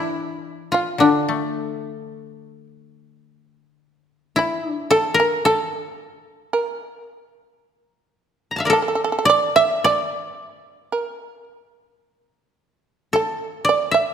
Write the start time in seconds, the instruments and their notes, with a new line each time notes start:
Already playing: koto E3 D4 E4, shamisen E4
0.72 koto F4, shamisen F4
0.98 koto D3 D4, shamisen D4
1.29 koto A3
4.36 koto E4, shamisen E4
4.69 koto D4
4.91 koto A4, shamisen A4
5.14 koto A#4
5.20 shamisen A#4
5.45 koto A4, shamisen A4
6.53 shamisen A#4
8.51 koto A#5
8.56 koto E5 F5 A5
8.65 koto A#4 D5
8.70 koto A4, shamisen A4
8.82 shamisen A4
8.88 shamisen A4
8.95 shamisen A4
9.04 shamisen A4
9.12 shamisen A4
9.19 shamisen A4
9.25 koto D5
9.29 shamisen D5
9.56 koto E5, shamisen E5
9.84 koto D5, shamisen D5
10.92 shamisen A#4
13.13 koto A4, shamisen A4
13.65 koto D5
13.69 shamisen D5
13.91 koto E5, shamisen E5